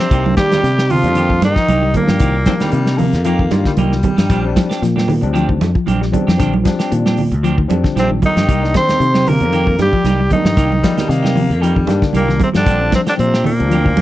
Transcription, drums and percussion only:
0.11 kick, closed hi-hat
0.26 high conga
0.37 kick, snare, closed hi-hat, high conga
0.52 snare, closed hi-hat, low conga
0.64 snare, closed hi-hat
0.79 snare
0.90 open hi-hat, low conga
1.04 closed hi-hat
1.15 closed hi-hat
1.30 kick
1.42 snare, closed hi-hat, high conga
1.56 kick, snare
1.68 closed hi-hat, high conga
1.94 kick, closed hi-hat, high conga, low conga
2.08 snare
2.20 kick, closed hi-hat
2.46 kick, snare, closed hi-hat, high conga
2.60 snare, closed hi-hat, low conga
2.72 closed hi-hat
2.86 snare
2.98 open hi-hat, low conga
3.13 snare, closed hi-hat
3.24 closed hi-hat
3.39 kick
3.51 snare, closed hi-hat, high conga
3.65 kick, snare
3.77 closed hi-hat, high conga
3.92 snare
4.03 kick, closed hi-hat, high conga, low conga
4.18 snare, closed hi-hat
4.30 kick, closed hi-hat
4.56 kick, snare, closed hi-hat, high conga
4.71 snare, closed hi-hat
4.83 snare, closed hi-hat
4.96 snare, high conga
5.08 open hi-hat, low conga
5.23 closed hi-hat
5.35 closed hi-hat
5.49 kick
5.61 snare, closed hi-hat, high conga
5.75 kick
5.87 closed hi-hat, high conga
6.02 snare
6.13 kick, closed hi-hat, high conga, low conga
6.28 snare, high conga
6.40 kick, snare, closed hi-hat
6.53 high conga
6.65 kick, snare, closed hi-hat, high conga
6.80 snare, closed hi-hat
6.92 closed hi-hat
7.06 snare, high conga
7.17 open hi-hat, low conga
7.32 closed hi-hat
7.44 closed hi-hat
7.58 kick
7.70 closed hi-hat, high conga
7.84 kick, snare
7.97 snare, closed hi-hat, high conga
8.22 kick, closed hi-hat, high conga, low conga
8.37 snare, closed hi-hat, high conga
8.49 kick, closed hi-hat
8.64 snare
8.74 kick, snare, closed hi-hat, high conga
8.89 snare, closed hi-hat, low conga
9.01 closed hi-hat
9.15 snare, high conga
9.27 open hi-hat, low conga
9.40 closed hi-hat
9.53 closed hi-hat
9.67 kick
9.79 snare, closed hi-hat, high conga
9.93 kick
10.05 snare, closed hi-hat, high conga
10.30 kick, closed hi-hat, high conga, low conga
10.45 snare, high conga
10.57 kick, snare, closed hi-hat
10.72 high conga
10.84 kick, snare, closed hi-hat, high conga
10.97 snare, closed hi-hat, low conga
11.11 snare, closed hi-hat
11.24 snare, high conga
11.36 open hi-hat, low conga
11.51 closed hi-hat
11.63 closed hi-hat
11.76 kick
11.87 snare, closed hi-hat, high conga
12.02 kick, snare
12.13 closed hi-hat, high conga
12.29 snare
12.40 kick, closed hi-hat, high conga, low conga
12.54 snare, closed hi-hat
12.66 kick, closed hi-hat
12.92 kick, snare, closed hi-hat, high conga
13.07 snare, closed hi-hat
13.19 closed hi-hat
13.34 snare
13.44 open hi-hat, low conga
13.60 closed hi-hat
13.71 closed hi-hat
13.86 kick
13.97 high conga

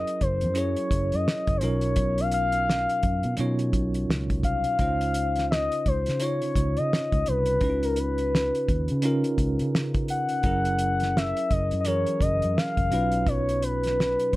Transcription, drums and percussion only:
0.07 closed hi-hat
0.21 kick, closed hi-hat
0.41 closed hi-hat
0.55 closed hi-hat
0.76 closed hi-hat
0.91 kick, closed hi-hat
1.12 closed hi-hat
1.28 snare
1.47 kick, closed hi-hat
1.61 closed hi-hat
1.81 closed hi-hat
1.96 kick, closed hi-hat
2.18 closed hi-hat
2.31 closed hi-hat
2.52 closed hi-hat
2.70 snare
2.89 closed hi-hat
3.03 kick, closed hi-hat
3.23 closed hi-hat
3.37 closed hi-hat
3.59 closed hi-hat
3.73 kick, closed hi-hat
3.94 closed hi-hat
4.10 snare
4.30 kick, closed hi-hat
4.43 kick, closed hi-hat
4.64 closed hi-hat
4.79 kick, closed hi-hat
5.01 closed hi-hat
5.14 closed hi-hat
5.36 snare, closed hi-hat
5.52 snare
5.72 closed hi-hat
5.86 kick, closed hi-hat
6.06 snare, closed hi-hat
6.20 closed hi-hat
6.42 closed hi-hat
6.55 kick, closed hi-hat
6.77 closed hi-hat
6.93 snare
7.12 kick, closed hi-hat
7.26 closed hi-hat
7.46 closed hi-hat
7.61 kick, closed hi-hat
7.83 closed hi-hat
7.96 closed hi-hat
8.18 closed hi-hat
8.35 snare
8.55 closed hi-hat
8.68 kick, closed hi-hat
8.88 closed hi-hat
9.02 closed hi-hat
9.24 closed hi-hat
9.38 kick, closed hi-hat
9.59 closed hi-hat
9.75 snare
9.94 kick, closed hi-hat
10.08 closed hi-hat
10.29 closed hi-hat
10.43 kick, closed hi-hat
10.65 closed hi-hat
10.79 closed hi-hat
11.00 snare, closed hi-hat
11.17 snare
11.37 closed hi-hat
11.51 kick, closed hi-hat
11.71 closed hi-hat
11.85 closed hi-hat
12.06 closed hi-hat
12.21 kick, closed hi-hat
12.42 closed hi-hat
12.58 snare
12.77 kick, closed hi-hat
12.92 closed hi-hat
13.12 closed hi-hat
13.27 kick, closed hi-hat
13.49 closed hi-hat
13.62 closed hi-hat
13.83 snare, closed hi-hat
14.00 snare
14.19 closed hi-hat
14.33 kick, closed hi-hat

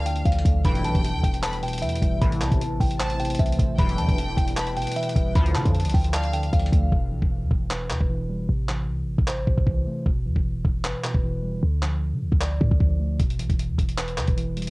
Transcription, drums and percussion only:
0.06 closed hi-hat
0.16 closed hi-hat
0.25 kick, closed hi-hat
0.32 closed hi-hat
0.39 closed hi-hat
0.45 kick, closed hi-hat
0.65 kick, closed hi-hat
0.75 closed hi-hat
0.84 closed hi-hat
0.95 kick, closed hi-hat
1.05 closed hi-hat
1.23 kick, closed hi-hat
1.34 closed hi-hat
1.43 clap, closed hi-hat
1.53 closed hi-hat
1.63 closed hi-hat
1.68 closed hi-hat
1.73 closed hi-hat
1.78 closed hi-hat
1.82 closed hi-hat
1.89 closed hi-hat
1.96 closed hi-hat
2.02 kick, closed hi-hat
2.22 kick, closed hi-hat
2.32 closed hi-hat
2.41 clap, closed hi-hat
2.52 kick, closed hi-hat
2.61 closed hi-hat
2.80 kick, open hi-hat
2.91 closed hi-hat
3.00 clap, closed hi-hat
3.10 closed hi-hat
3.20 closed hi-hat
3.25 closed hi-hat
3.30 closed hi-hat
3.35 closed hi-hat
3.39 kick, closed hi-hat
3.46 closed hi-hat
3.52 closed hi-hat
3.59 kick, closed hi-hat
3.78 kick, closed hi-hat
3.89 closed hi-hat
3.98 closed hi-hat
4.08 kick, closed hi-hat
4.18 closed hi-hat
4.37 kick, closed hi-hat
4.48 closed hi-hat
4.57 clap, closed hi-hat
4.67 closed hi-hat
4.77 closed hi-hat
4.82 closed hi-hat
4.87 closed hi-hat
4.92 closed hi-hat
4.96 closed hi-hat
5.03 closed hi-hat
5.09 closed hi-hat
5.16 kick, closed hi-hat
5.35 kick, closed hi-hat
5.46 closed hi-hat
5.55 clap, closed hi-hat
5.65 kick, closed hi-hat
5.75 closed hi-hat
5.80 closed hi-hat
5.85 closed hi-hat
5.90 closed hi-hat
5.94 kick, open hi-hat
6.04 closed hi-hat
6.14 clap, closed hi-hat
6.24 closed hi-hat
6.33 closed hi-hat
6.43 closed hi-hat
6.53 kick, closed hi-hat
6.59 closed hi-hat
6.66 closed hi-hat
6.73 kick, closed hi-hat
6.92 kick
7.22 kick
7.51 kick
7.71 clap
7.90 clap
8.01 kick
8.69 clap
9.18 kick
9.28 clap
9.47 kick
9.58 kick
9.67 kick
10.06 kick
10.36 kick
10.65 kick
10.84 clap
11.04 clap
11.14 kick
11.82 clap
12.32 kick
12.41 clap
12.61 kick
12.71 kick
12.80 kick
13.20 kick, closed hi-hat
13.30 closed hi-hat
13.39 closed hi-hat
13.50 kick, closed hi-hat
13.59 closed hi-hat
13.78 kick, closed hi-hat
13.89 closed hi-hat
13.98 clap, closed hi-hat
14.08 closed hi-hat
14.18 clap
14.27 kick, closed hi-hat
14.38 closed hi-hat
14.57 closed hi-hat
14.62 closed hi-hat

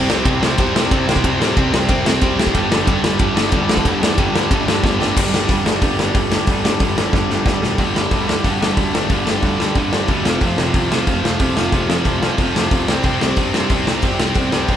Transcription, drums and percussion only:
0.10 snare
0.25 kick, ride
0.43 snare
0.58 kick, ride
0.76 snare
0.91 kick, ride
1.09 snare
1.16 kick
1.24 kick, ride
1.42 snare
1.57 kick, ride
1.74 snare
1.89 kick, ride
2.06 snare
2.21 kick, ride
2.39 snare
2.47 kick
2.55 kick, ride
2.72 snare
2.87 kick, ride
3.04 snare
3.19 kick, ride
3.37 snare
3.52 kick, ride
3.69 snare
3.77 kick
3.85 kick, ride
4.03 snare
4.18 kick, ride
4.36 snare
4.51 kick, ride
4.68 snare
4.84 kick, snare
5.02 snare
5.17 kick, crash
5.34 snare
5.49 kick, open hi-hat
5.66 snare
5.82 kick, open hi-hat
5.99 snare
6.15 kick, open hi-hat
6.32 snare
6.47 kick, open hi-hat
6.65 snare
6.80 kick, open hi-hat
6.98 snare
7.13 kick, snare
7.30 snare
7.46 kick, snare
7.63 snare
7.78 kick, open hi-hat
7.96 snare
8.11 kick, open hi-hat
8.29 snare
8.44 kick, open hi-hat
8.63 snare
8.77 kick, open hi-hat
8.95 snare
9.10 kick, open hi-hat
9.27 snare
9.43 kick, open hi-hat
9.60 snare
9.75 kick, open hi-hat
9.93 snare
10.08 kick, open hi-hat
10.25 snare
10.41 kick, open hi-hat
10.58 snare
10.74 kick, open hi-hat
10.92 snare
11.07 kick, open hi-hat
11.25 snare
11.39 kick, open hi-hat
11.57 snare
11.72 kick, open hi-hat
11.90 snare
12.05 kick, open hi-hat
12.23 snare
12.38 kick, open hi-hat
12.56 snare
12.71 kick, open hi-hat
12.88 snare
13.04 kick, open hi-hat
13.21 snare
13.37 kick, open hi-hat
13.54 snare
13.70 kick, open hi-hat
13.87 snare
14.02 kick, open hi-hat
14.20 snare
14.35 kick, open hi-hat
14.52 snare
14.68 kick, open hi-hat

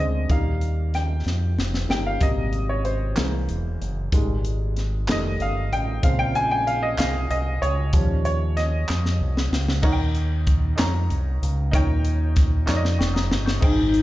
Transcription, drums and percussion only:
0.30 kick, closed hi-hat
0.61 closed hi-hat
0.94 snare, closed hi-hat
1.27 snare
1.59 snare
1.74 snare
1.90 snare
2.21 kick, closed hi-hat
2.53 closed hi-hat
2.85 closed hi-hat
3.16 snare, clap, closed hi-hat
3.49 closed hi-hat
3.82 closed hi-hat
4.12 kick, closed hi-hat
4.45 closed hi-hat
4.77 snare, closed hi-hat
5.08 snare, clap, closed hi-hat
5.40 closed hi-hat
5.73 closed hi-hat
6.03 kick, closed hi-hat
6.35 closed hi-hat
6.68 closed hi-hat
6.98 snare, clap, closed hi-hat
7.31 closed hi-hat
7.63 closed hi-hat
7.93 kick, closed hi-hat
8.25 closed hi-hat
8.57 snare, closed hi-hat
8.88 snare, clap
9.06 snare
9.37 snare
9.53 snare
9.68 snare
9.83 kick, crash
10.15 closed hi-hat
10.47 kick, closed hi-hat
10.78 snare, clap, closed hi-hat
11.10 closed hi-hat
11.43 closed hi-hat
11.73 kick, closed hi-hat
12.05 closed hi-hat
12.36 kick, snare, closed hi-hat
12.68 snare, clap
12.85 snare
13.01 snare
13.16 snare
13.31 snare
13.48 snare
13.62 kick, crash
13.94 closed hi-hat

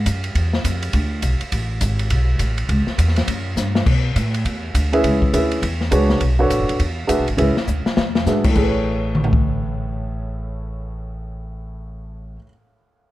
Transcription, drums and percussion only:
0.06 kick, hi-hat pedal, ride
0.24 ride
0.35 kick, ride
0.53 snare
0.65 kick, hi-hat pedal, ride
0.82 ride
0.93 kick, ride
1.22 kick, hi-hat pedal, ride
1.41 ride
1.52 kick, ride
1.81 kick, hi-hat pedal, ride
1.99 ride
2.10 kick, ride
2.39 kick, hi-hat pedal, ride
2.58 ride
2.69 kick, ride
2.87 snare
2.98 kick, hi-hat pedal, ride
3.08 snare
3.16 snare, ride
3.28 kick, ride
3.57 snare, hi-hat pedal
3.75 snare
3.86 kick, crash
4.16 kick, hi-hat pedal, ride
4.34 ride
4.45 kick, ride
4.74 kick, hi-hat pedal, ride
4.93 ride
5.04 kick, ride
5.22 kick
5.33 kick, hi-hat pedal, ride
5.51 ride
5.62 kick, ride
5.81 snare
5.92 kick, hi-hat pedal, ride
6.09 snare
6.21 kick, ride
6.50 kick, hi-hat pedal, ride
6.69 ride
6.80 kick, ride
7.09 kick, hi-hat pedal, ride
7.28 ride
7.38 kick, ride
7.57 snare
7.68 hi-hat pedal
7.86 snare
7.97 snare
8.15 snare
8.26 snare, hi-hat pedal
8.44 kick, crash
8.55 kick, crash
9.15 mid tom
9.24 floor tom
9.33 kick

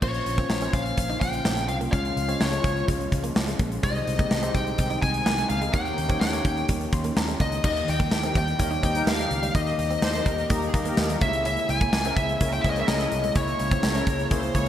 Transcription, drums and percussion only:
0.02 kick, crash
0.14 closed hi-hat
0.26 closed hi-hat
0.38 kick, closed hi-hat
0.50 snare
0.61 closed hi-hat
0.73 kick, closed hi-hat
0.86 closed hi-hat
0.97 kick, closed hi-hat
1.09 closed hi-hat
1.21 kick, closed hi-hat
1.33 closed hi-hat
1.45 snare
1.57 closed hi-hat
1.69 closed hi-hat
1.81 closed hi-hat
1.93 kick, closed hi-hat
2.05 closed hi-hat
2.17 closed hi-hat
2.29 closed hi-hat
2.41 snare
2.53 closed hi-hat
2.64 kick, closed hi-hat
2.77 closed hi-hat
2.88 kick, closed hi-hat
3.01 closed hi-hat
3.12 kick, closed hi-hat
3.24 closed hi-hat
3.36 snare
3.48 closed hi-hat
3.59 kick, closed hi-hat
3.72 closed hi-hat
3.83 kick, closed hi-hat
3.95 closed hi-hat
4.07 closed hi-hat
4.19 kick, closed hi-hat
4.31 snare
4.43 closed hi-hat
4.55 kick, closed hi-hat
4.67 closed hi-hat
4.78 kick, closed hi-hat
4.90 closed hi-hat
5.02 kick, closed hi-hat
5.14 closed hi-hat
5.26 snare
5.38 closed hi-hat
5.50 closed hi-hat
5.62 closed hi-hat
5.73 kick, closed hi-hat
5.86 closed hi-hat
5.98 closed hi-hat
6.09 kick, closed hi-hat
6.21 snare
6.33 closed hi-hat
6.45 kick, closed hi-hat
6.57 closed hi-hat
6.69 kick, closed hi-hat
6.81 closed hi-hat
6.93 kick, closed hi-hat
7.04 closed hi-hat
7.17 snare
7.28 closed hi-hat
7.40 kick, closed hi-hat
7.52 closed hi-hat
7.64 kick, crash
7.76 closed hi-hat
7.88 closed hi-hat
8.00 kick, closed hi-hat
8.11 snare, tambourine
8.23 closed hi-hat
8.35 kick, closed hi-hat
8.48 closed hi-hat
8.59 kick, closed hi-hat
8.71 closed hi-hat
8.83 kick, closed hi-hat
8.95 closed hi-hat
9.07 snare, tambourine
9.19 closed hi-hat
9.31 closed hi-hat
9.43 closed hi-hat
9.55 kick, closed hi-hat
9.67 closed hi-hat
9.79 closed hi-hat
9.90 closed hi-hat
10.02 snare, tambourine
10.14 closed hi-hat
10.26 kick, closed hi-hat
10.38 closed hi-hat
10.50 kick, closed hi-hat
10.62 closed hi-hat
10.74 kick, closed hi-hat
10.85 closed hi-hat
10.97 snare, tambourine
11.10 closed hi-hat
11.21 kick, closed hi-hat
11.33 closed hi-hat
11.45 closed hi-hat
11.57 closed hi-hat
11.69 closed hi-hat
11.81 kick, closed hi-hat
11.93 snare, tambourine
12.05 closed hi-hat
12.17 kick, closed hi-hat
12.29 closed hi-hat
12.41 kick, closed hi-hat
12.53 closed hi-hat
12.64 kick, closed hi-hat
12.76 closed hi-hat
12.88 snare, tambourine
13.00 closed hi-hat
13.12 closed hi-hat
13.24 closed hi-hat
13.35 kick, closed hi-hat
13.48 closed hi-hat
13.59 closed hi-hat
13.71 kick, closed hi-hat
13.83 snare, tambourine
13.95 closed hi-hat
14.07 kick, closed hi-hat
14.19 closed hi-hat
14.31 kick, closed hi-hat
14.43 closed hi-hat
14.55 kick, closed hi-hat

